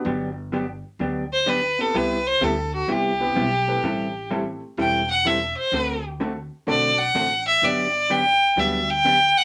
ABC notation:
X:1
M:4/4
L:1/8
Q:"Swing" 1/4=127
K:G
V:1 name="Fiddle"
z4 z c B A | B c A F G4- | G2 z2 g f e c- | c z3 d f2 e |
d2 g2 e g2 f |]
V:2 name="Upright piano"
z6 z [B,CEGB] | z4 z [B,CEGB] z [A,CEGB] | z2 [A,CEGA] z4 z | z4 [A,CDFA] z3 |
z4 [G,B,DFG] z3 |]
V:3 name="Hollow-body jazz guitar"
[D,F,B,DG] z [D,F,B,DG] z [D,F,B,DG] z [D,F,B,DG] z | [C,G,B,EG] z [C,G,B,EG] z [C,G,B,EG] z [C,G,B,EG] z | [E,G,CEA] z [E,G,CEA] z [E,G,CEA] z [E,G,CEA] z | [D,A,CFA] z [D,A,CFA] z [D,A,CFA] z [D,A,CFA] z |
[D,F,B,DG] z [D,F,B,DG] z [D,F,B,DG] z [D,F,B,DG] z |]
V:4 name="Upright bass" clef=bass
G,,,4 D,,4 | C,,2 D,,2 C,,2 B,,,2 | A,,,4 E,,,4 | D,,4 B,,,2 A,,,2 |
G,,,4 D,,4 |]